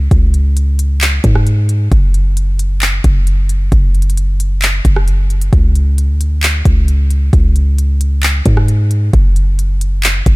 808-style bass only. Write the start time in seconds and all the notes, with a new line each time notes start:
0.11 C#2
1.24 G#2
1.92 F#1
3.04 F#1
3.72 F#1
4.85 F#1
5.53 C#2
6.09 D2
6.65 C#2
7.33 C#2
8.46 G#2
9.13 F#1
10.26 F#1